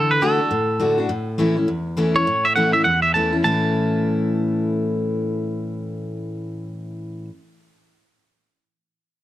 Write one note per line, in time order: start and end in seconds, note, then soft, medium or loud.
0.00 0.20 D3 loud
0.00 0.11 A4 loud
0.11 0.22 B4 medium
0.21 0.39 D3 medium
0.21 0.39 A3 medium
0.21 0.39 D4 loud
0.21 0.38 F#4 loud
0.21 1.06 A4 medium
0.39 0.51 D4 medium
0.39 0.50 F#4 medium
0.51 1.07 A2 medium
0.80 0.97 D3 loud
0.80 0.98 A3 medium
0.80 0.98 D4 medium
0.80 0.97 F#4 loud
0.98 1.10 D4 medium
0.98 1.09 F#4 medium
1.09 1.66 A2 loud
1.38 1.56 E3 medium
1.38 1.56 A3 loud
1.38 1.56 C#4 loud
1.38 1.55 E4 loud
1.57 1.68 C#4 soft
1.57 1.68 E4 medium
1.68 2.24 E2 medium
1.97 2.14 E3 medium
1.97 2.15 A3 medium
1.97 2.15 C#4 loud
1.97 2.14 E4 medium
2.15 2.27 C#4 soft
2.15 2.26 E4 medium
2.15 2.46 C#5 medium
2.27 2.83 A2 loud
2.45 2.55 E5 medium
2.56 2.73 E3 medium
2.56 2.73 A3 loud
2.56 2.74 C#4 loud
2.56 2.73 E4 loud
2.56 2.73 F#5 medium
2.73 2.86 C#4 soft
2.73 2.85 E4 medium
2.73 2.84 E5 loud
2.84 3.42 E2 medium
2.84 3.02 F#5 loud
3.02 3.13 E5 medium
3.14 3.32 E3 medium
3.14 3.32 A3 medium
3.14 3.32 C#4 medium
3.14 3.31 E4 loud
3.14 3.36 A5 loud
3.33 3.44 C#4 medium
3.33 3.44 E4 medium
3.44 7.29 A2 medium
3.44 7.29 E3 medium
3.44 7.29 A3 medium
3.44 7.29 C#4 loud
3.44 7.30 E4 loud
3.44 7.25 A5 medium